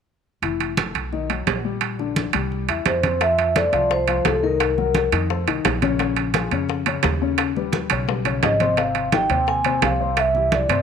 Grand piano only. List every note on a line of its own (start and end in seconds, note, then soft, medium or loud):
0.43 0.71 E3 medium
0.43 0.71 E4 medium
0.78 1.06 A3 medium
0.78 1.06 A4 medium
1.12 1.27 D#3 medium
1.12 1.27 D#4 medium
1.30 1.58 F#3 medium
1.30 1.58 F#4 medium
1.65 1.93 G3 medium
1.65 1.93 G4 medium
1.99 2.28 D3 medium
1.99 2.28 D4 medium
2.34 2.62 G3 medium
2.34 2.62 G4 medium
2.69 2.97 E4 medium
2.69 2.97 E5 medium
3.03 3.18 C4 medium
3.03 3.18 C5 medium
3.20 3.49 F3 medium
3.20 3.50 F4 medium
3.20 3.50 E5 medium
3.56 3.70 A3 medium
3.56 3.70 A4 medium
3.56 3.71 C5 medium
3.73 4.02 F3 medium
3.73 4.02 F4 medium
3.73 4.02 F5 medium
4.08 4.36 F3 medium
4.08 4.37 F4 medium
4.08 4.37 F5 medium
4.43 4.72 D#3 medium
4.43 4.72 D#4 medium
4.43 4.72 D#5 medium
4.78 5.06 F#3 medium
4.78 5.06 F#4 medium
4.78 5.07 A#4 medium
5.13 5.27 D#3 medium
5.13 5.27 D#4 medium
5.13 5.27 D#5 medium
5.30 5.44 A3 medium
5.30 5.45 A4 medium
5.30 5.45 C5 medium
5.48 5.76 D#3 medium
5.48 5.76 D#4 medium
5.48 5.76 D#5 medium
5.82 5.97 C#3 medium
5.82 5.96 C#4 medium
5.82 5.97 C#5 medium
5.99 6.28 C#3 medium
5.99 6.28 C#4 medium
5.99 6.28 C#5 medium
6.35 6.49 F3 medium
6.35 6.49 F4 medium
6.35 6.49 G#4 medium
6.52 6.80 C#3 medium
6.52 6.81 C#4 medium
6.52 6.81 C#5 medium
6.86 7.15 C#3 medium
6.86 7.15 C#4 medium
6.86 7.15 C#5 medium
7.22 7.50 C#3 medium
7.22 7.50 C#4 medium
7.22 7.50 C#5 medium
7.57 7.85 G3 medium
7.57 7.85 G4 medium
7.57 7.85 B4 medium
7.91 8.05 C#3 medium
7.91 8.05 C#4 medium
7.91 8.06 C#5 medium
8.08 8.23 G3 medium
8.08 8.23 G4 medium
8.08 8.23 B4 medium
8.25 8.54 C#3 medium
8.25 8.54 C#4 medium
8.25 8.54 C#5 medium
8.60 8.75 C3 medium
8.60 8.75 C4 medium
8.60 8.75 C5 medium
8.78 9.06 C3 medium
8.78 9.07 C4 medium
8.78 9.07 C5 medium
9.13 9.27 D#3 medium
9.13 9.27 D#4 medium
9.13 9.27 G4 medium
9.30 9.59 C3 medium
9.30 9.59 C4 medium
9.30 9.59 C5 medium
9.65 9.94 C3 medium
9.65 9.94 C4 medium
9.65 9.94 C5 medium
10.00 10.29 C3 medium
10.00 10.29 C4 medium
10.00 10.29 C5 medium
10.35 10.63 E3 medium
10.35 10.64 E4 medium
10.35 10.64 G4 medium
10.70 10.82 C3 medium
10.70 10.82 C4 medium
10.70 10.82 C5 medium